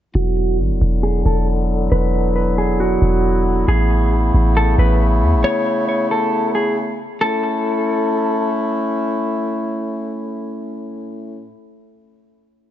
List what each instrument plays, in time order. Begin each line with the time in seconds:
0.15 808-style bass E1, woodwind section D3 F#3 B3 E4, clean electric guitar F#4
0.59 808-style bass G#1
0.71 808-style bass E1
0.82 808-style bass E1
1.03 clean electric guitar G#4
1.26 808-style bass E1, clean electric guitar A4
1.92 808-style bass E1, clean electric guitar B4
2.36 clean electric guitar B4
2.58 clean electric guitar G#4
2.80 clean electric guitar F#4
3.02 808-style bass E1
3.68 808-style bass A1, woodwind section C#3 A3, clean electric guitar G#4
4.34 808-style bass A1
4.57 clean electric guitar A4
4.78 808-style bass A1, clean electric guitar B4
5.22 808-style bass E2
5.34 808-style bass A1
5.44 clean electric guitar C#5
5.89 clean electric guitar C#5
6.11 clean electric guitar A4
6.55 clean electric guitar G#4
7.21 woodwind section A2 A3 C#4 E4, clean electric guitar A4